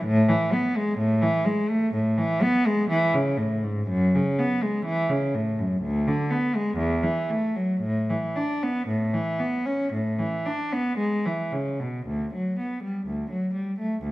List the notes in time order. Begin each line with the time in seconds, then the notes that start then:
0.04 A2
0.29 E3
0.53 B3
0.76 G#3
0.99 A2
1.22 E3
1.45 G#3
1.70 A3
1.94 A2
2.18 E3
2.42 B3
2.67 G#3
2.90 E3
3.14 C#3
3.38 A2
3.63 G#2
3.88 F#2
4.15 C#3
4.39 B3
4.63 G#3
4.86 E3
5.09 C#3
5.35 A2
5.59 F#2
5.82 D2
6.08 D3
6.31 B3
6.55 G#3
6.77 E2
7.03 E3
7.30 A3
7.56 F#3
7.81 A2
8.10 E3
8.36 D4
8.63 B3
8.88 A2
9.14 E3
9.40 B3
9.66 C#4
9.93 A2
10.19 E3
10.46 D4
10.72 B3
10.98 G#3
11.26 E3
11.52 C#3
11.80 B2
12.07 D2
12.34 F#3
12.59 B3
12.84 G3
13.07 D2
13.31 F#3
13.54 G3
13.79 A3
14.02 D2